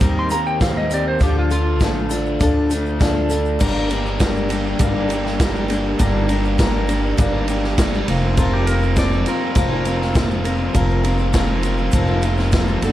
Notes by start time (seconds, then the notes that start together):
Already playing: A#3 C4 G4
0.00 D#2 D#3 G3 C4 G4 A#4, kick, closed hi-hat, shaker
0.19 C6
0.30 A#3 C4 G4 A#4 A#5, closed hi-hat, shaker
0.46 G5, shaker
0.61 G3 C4 G4 A#4 F5, kick, snare, closed hi-hat, shaker
0.77 D#5
0.91 D#3 C4 G4 A#4 D5, closed hi-hat, shaker
1.08 C5
1.20 D2 D3 F3 D4 F4 G4 A4, kick, closed hi-hat, shaker
1.39 F4
1.50 D4 F4 A4, closed hi-hat, shaker
1.80 A1 F3 A3 D4 F4 A4, kick, snare, closed hi-hat, shaker
2.10 D4 F4 A4, closed hi-hat, shaker
2.26 shaker
2.40 D2 D3 F3 D4 F4 A4, kick, closed hi-hat, shaker
2.70 A3 D4 F4 A4, closed hi-hat, shaker
2.86 shaker
3.00 F3 D4 F4 A4, kick, snare, closed hi-hat, shaker
3.30 D3 D4 F4 A4, closed hi-hat, shaker
3.45 shaker
3.59 G1 G2 D3 G3 A#3 D4 G4 A#4, kick, crash, shaker
3.89 G3 A#3 D4 A#4, ride, shaker
3.93 G4
4.06 A#3 D4 G4, shaker
4.19 G3 A#3 D4 G4 A#4, kick, snare, ride, shaker
4.36 shaker
4.49 G3 A#3 D4 G4 A#4, ride, shaker
4.65 A#3 D4 G4
4.79 G1 G2 D3 G3 A#3 D4 A#4, kick, ride, shaker
4.96 A#3 D4 G4
5.09 G3 A#3 D4 G4 A#4, ride, shaker
5.24 A#3 D4 G4, snare
5.39 G3 A#3 D4 G4 A#4, kick, snare, ride, shaker
5.54 A#3 D4 G4, shaker
5.68 G3 A#3 D4 A#4, ride, shaker
5.72 G4
5.99 G1 G2 D3 G3 A#3 D4 A#4, kick, ride, shaker
6.03 G4
6.29 G3 A#3 D4 G4 A#4, ride, shaker
6.45 A#3 D4 G4, shaker
6.58 G3 A#3 D4 G4 A#4, kick, snare, ride, shaker
6.87 G3 A#3 D4 G4 A#4, ride, shaker
7.03 A#3 D4 G4
7.17 G1 G2 D3 G3 A#3 D4 A#4, kick, ride, shaker
7.33 A#3 D4 G4
7.47 G3 A#3 D4 G4 A#4, ride, shaker
7.64 A#3 D4 G4, snare
7.77 G3 A#3 D4 G4 A#4, kick, snare, ride, shaker
7.93 A#3 D4 G4, shaker
8.07 F1 F2 C3 F3 A#3 C4 F4 A#4, ride
8.37 F2 C3 F3 A#3 C4 F4 A#4, kick, ride, shaker
8.53 G4
8.66 F3 A#3 C4 F4 A#4, ride, shaker
8.81 F3 A#3 C4 F4, shaker
8.95 F2 C3 F3 A#3 C4 F4 A#4 D5, kick, snare, ride, shaker
9.13 shaker
9.25 F3 A#3 C4 F4 A#4, ride, shaker
9.40 F3 A#3 C4 F4
9.55 F1 F3 C4 F4 A#4, kick, ride, shaker
9.70 F3 A#3 C4 F4
9.84 F3 A#3 C4 F4 A#4, ride, shaker
10.00 F3 A#3 C4 F4, snare
10.14 F2 C3 F3 A#3 C4 F4 A#4, kick, snare, ride, shaker
10.29 F3 A#3 C4 F4, shaker
10.43 F3 A#3 C4 F4 A#4, ride, shaker
10.73 F1 F2 C3 F3 A#3 C4 F4 A#4, kick, ride, shaker
10.90 shaker
11.03 F3 A#3 C4 F4 A#4, ride, shaker
11.18 F3 A#3 C4 F4, shaker
11.33 F2 C3 F3 A#3 C4 F4 A#4, kick, snare, ride, shaker
11.63 F3 A#3 C4 F4 A#4, ride, shaker
11.77 F3 A#3 C4 F4, shaker
11.92 F1 F3 C4 F4 A#4, kick, ride, shaker
12.08 F3 A#3 C4 F4, shaker
12.22 F3 A#3 C4 F4 A#4, ride, shaker
12.26 C4
12.37 F3 A#3 C4 F4, snare, shaker
12.52 F2 C3 F3 A#3 C4 F4, kick, snare, ride, shaker
12.56 A#4
12.68 F3 A#3 C4 F4, shaker
12.82 F#1 F#3 A3 D4 F#4 A4, ride, shaker
12.86 D4